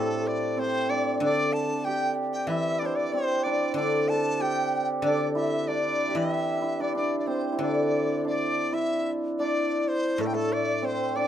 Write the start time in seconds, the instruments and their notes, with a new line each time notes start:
Already playing: guzheng A2, hammered dulcimer A3 C4 D4 E4 G4, dizi A4
0.27 dizi D5
0.57 hammered dulcimer C4, dizi C5
0.90 hammered dulcimer D4, dizi D5
1.20 guzheng D3, hammered dulcimer D4, dizi D5
1.53 dizi A5
1.85 hammered dulcimer G4, dizi G5
2.33 dizi G5
2.47 guzheng E3, hammered dulcimer E4, dizi E5
2.79 hammered dulcimer D4, dizi D5
2.86 dizi C5
2.96 dizi D5
3.13 hammered dulcimer C4, dizi C5
3.43 hammered dulcimer D4, dizi D5
3.74 guzheng D3, hammered dulcimer D4, dizi D5
4.09 hammered dulcimer A4, dizi A5
4.40 hammered dulcimer G4, dizi G5
5.02 guzheng D3, hammered dulcimer D4, dizi D5
5.35 hammered dulcimer E4, dizi E5
5.68 hammered dulcimer D4, dizi D5
6.08 hammered dulcimer G4
6.15 guzheng E3, hammered dulcimer E4, dizi E5
6.62 hammered dulcimer E4
6.80 hammered dulcimer D4, dizi D5
6.95 hammered dulcimer D4, dizi D5
7.19 dizi D5
7.27 hammered dulcimer C4, dizi C5
7.52 hammered dulcimer E4
7.59 guzheng D3, hammered dulcimer D4, dizi D5
8.25 hammered dulcimer D4, dizi D5
8.72 hammered dulcimer E4, dizi E5
9.39 hammered dulcimer D4, dizi D5
9.80 dizi D5
9.88 dizi C5
10.18 guzheng A2, hammered dulcimer A3, dizi A4
10.26 dizi G5
10.33 hammered dulcimer A3, dizi A4
10.53 dizi D5
10.82 hammered dulcimer C4, dizi C5
11.16 hammered dulcimer D4, dizi D5